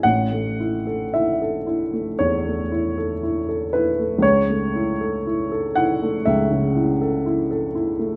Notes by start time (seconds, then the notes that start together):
0.03 A1 F#5
0.32 A3
0.60 E4
0.87 A4
1.14 E4 E5
1.42 A4
1.67 E4
1.93 A3
2.19 E2 C#5
2.46 A3
2.72 E4
2.98 A4
3.23 E4
3.49 A4
3.73 E4 B4
3.99 A3
4.18 C#2 C#5
4.50 A3
4.75 E4
5.01 A4
5.27 E4
5.52 A4
5.75 E4 F#5
6.03 A3
6.25 C#2 E5
6.51 C#3
6.76 E4
7.01 A4
7.26 E4
7.51 A4
7.75 E4
7.99 A3